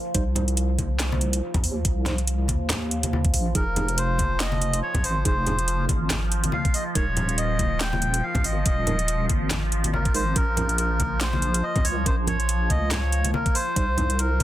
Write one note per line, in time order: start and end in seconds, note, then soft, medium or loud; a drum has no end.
0.00 3.54 F3 medium
0.15 1.41 C2 loud
0.15 0.22 G3 medium
0.15 0.22 D#4 medium
0.15 0.22 C5 loud
0.15 kick loud
0.15 closed hi-hat medium
0.35 0.44 G3 medium
0.35 0.44 D#4 medium
0.35 0.44 C5 medium
0.35 closed hi-hat medium
0.35 low conga medium
0.48 closed hi-hat soft
0.57 closed hi-hat medium
0.78 kick medium
0.78 closed hi-hat medium
0.78 high conga medium
1.00 snare loud
1.00 clap medium
1.00 closed hi-hat medium
1.12 high conga medium
1.21 closed hi-hat medium
1.33 closed hi-hat medium
1.54 kick loud
1.54 closed hi-hat soft
1.54 low conga medium
1.64 1.83 D#2 loud
1.64 open hi-hat loud
1.85 2.48 C2 loud
1.85 kick loud
1.85 closed hi-hat medium
2.06 2.14 G3 medium
2.06 2.14 D#4 medium
2.06 2.14 C5 medium
2.06 snare medium
2.06 closed hi-hat medium
2.06 low conga medium
2.18 closed hi-hat soft
2.27 closed hi-hat medium
2.48 3.35 D#2 medium
2.48 kick medium
2.48 closed hi-hat medium
2.48 high conga medium
2.69 snare loud
2.69 clap medium
2.69 closed hi-hat medium
2.69 low conga medium
2.91 closed hi-hat medium
3.03 closed hi-hat medium
3.03 high conga medium
3.13 high conga medium
3.25 kick loud
3.25 closed hi-hat soft
3.34 3.54 A#1 medium
3.34 kick medium
3.34 open hi-hat loud
3.55 4.82 F1 loud
3.55 3.63 F3 medium
3.55 14.43 F3 medium
3.55 3.63 D#4 medium
3.55 3.63 G#4 loud
3.55 3.99 A#4 loud
3.55 kick loud
3.55 closed hi-hat medium
3.76 3.84 F3 medium
3.76 3.84 D#4 medium
3.76 3.84 G#4 medium
3.76 closed hi-hat medium
3.76 low conga medium
3.88 closed hi-hat soft
3.98 4.41 C5 loud
3.98 closed hi-hat medium
4.18 kick medium
4.18 closed hi-hat medium
4.18 high conga medium
4.40 4.80 D#5 loud
4.40 snare loud
4.40 clap medium
4.40 closed hi-hat medium
4.52 high conga medium
4.62 closed hi-hat medium
4.73 closed hi-hat medium
4.83 5.05 C#5 loud
4.94 kick loud
4.94 closed hi-hat soft
4.94 low conga medium
5.04 5.24 G#1 loud
5.04 5.24 C5 loud
5.04 open hi-hat medium
5.25 5.88 F1 loud
5.25 5.33 F3 medium
5.25 5.33 D#4 medium
5.25 5.33 G#4 medium
5.25 5.85 C5 loud
5.25 kick loud
5.25 closed hi-hat medium
5.46 5.54 F3 medium
5.46 5.54 D#4 medium
5.46 5.54 G#4 medium
5.46 closed hi-hat medium
5.46 low conga medium
5.59 closed hi-hat soft
5.68 closed hi-hat medium
5.89 6.52 G#1 medium
5.89 kick medium
5.89 closed hi-hat medium
5.89 high conga medium
6.10 snare loud
6.10 clap medium
6.10 closed hi-hat medium
6.10 low conga medium
6.32 closed hi-hat medium
6.44 closed hi-hat medium
6.44 high conga medium
6.52 6.75 F5 loud
6.52 high conga medium
6.65 kick loud
6.65 closed hi-hat soft
6.74 6.84 D#5 medium
6.74 open hi-hat medium
6.95 8.22 D#1 loud
6.95 7.03 G#3 medium
6.95 7.03 D#4 medium
6.95 7.03 A#4 loud
6.95 7.39 C#5 loud
6.95 kick loud
6.95 closed hi-hat medium
7.17 closed hi-hat medium
7.17 low conga medium
7.29 closed hi-hat soft
7.38 7.82 D#5 loud
7.38 closed hi-hat medium
7.59 kick medium
7.59 closed hi-hat medium
7.59 high conga medium
7.80 8.24 G5 loud
7.80 snare loud
7.80 clap medium
7.80 closed hi-hat medium
7.93 high conga medium
8.02 closed hi-hat medium
8.14 closed hi-hat medium
8.23 8.45 F5 loud
8.35 kick loud
8.35 closed hi-hat soft
8.35 low conga medium
8.44 8.64 G#1 loud
8.44 8.64 D#5 medium
8.44 open hi-hat medium
8.66 9.28 D#1 loud
8.66 9.26 D#5 loud
8.66 kick loud
8.66 closed hi-hat medium
8.87 8.95 G#3 medium
8.87 8.95 D#4 medium
8.87 8.95 A#4 medium
8.87 closed hi-hat medium
8.87 low conga medium
8.99 closed hi-hat soft
9.08 closed hi-hat medium
9.29 9.71 G#1 medium
9.29 kick medium
9.29 closed hi-hat soft
9.29 high conga medium
9.51 snare loud
9.51 clap medium
9.51 closed hi-hat medium
9.51 low conga medium
9.72 10.35 G#1 loud
9.72 closed hi-hat medium
9.84 closed hi-hat medium
9.84 high conga medium
9.94 10.13 A#4 medium
9.94 high conga medium
10.05 kick loud
10.05 closed hi-hat soft
10.14 10.22 G#3 medium
10.14 10.22 D#4 medium
10.14 10.22 A#4 medium
10.14 10.37 C5 loud
10.14 open hi-hat medium
10.36 11.62 A#1 loud
10.36 10.44 F3 medium
10.36 10.44 C#4 medium
10.36 10.43 A#4 loud
10.36 10.77 A#4 loud
10.36 kick loud
10.36 closed hi-hat medium
10.57 10.65 F3 medium
10.57 10.65 C#4 medium
10.57 10.65 A#4 medium
10.57 closed hi-hat medium
10.57 low conga medium
10.69 closed hi-hat soft
10.78 11.22 A#4 loud
10.78 closed hi-hat medium
11.00 kick medium
11.00 closed hi-hat medium
11.00 high conga medium
11.21 11.65 C5 loud
11.21 snare loud
11.21 clap medium
11.21 closed hi-hat medium
11.33 high conga medium
11.42 closed hi-hat soft
11.54 closed hi-hat medium
11.63 11.85 D#5 loud
11.76 kick loud
11.76 closed hi-hat soft
11.76 low conga medium
11.85 12.05 C#2 loud
11.85 12.07 C#5 loud
11.85 open hi-hat loud
12.06 12.69 A#1 loud
12.06 12.14 F3 medium
12.06 12.14 C#4 medium
12.06 12.14 A#4 medium
12.06 12.16 C5 loud
12.06 kick loud
12.06 closed hi-hat medium
12.27 12.35 F3 medium
12.27 12.35 C#4 medium
12.27 12.35 A#4 medium
12.27 12.71 C#5 loud
12.27 closed hi-hat medium
12.27 low conga medium
12.40 closed hi-hat soft
12.49 closed hi-hat medium
12.70 13.33 C#2 medium
12.70 12.92 D#5 loud
12.70 kick medium
12.70 closed hi-hat medium
12.70 high conga medium
12.91 13.31 C#5 loud
12.91 snare loud
12.91 clap medium
12.91 closed hi-hat medium
12.91 low conga medium
13.12 closed hi-hat medium
13.24 closed hi-hat medium
13.24 high conga medium
13.34 13.56 A#4 loud
13.34 high conga loud
13.46 kick loud
13.46 closed hi-hat soft
13.55 14.21 C5 loud
13.55 open hi-hat loud
13.76 14.43 C2 loud
13.76 13.84 G3 medium
13.76 13.84 D#4 medium
13.76 13.84 C5 loud
13.76 kick loud
13.76 closed hi-hat medium
13.98 14.05 G3 medium
13.98 14.05 D#4 medium
13.98 14.05 C5 medium
13.98 closed hi-hat medium
13.98 low conga medium
14.10 closed hi-hat soft
14.19 14.43 A#4 medium
14.19 closed hi-hat medium
14.40 kick medium
14.40 high conga medium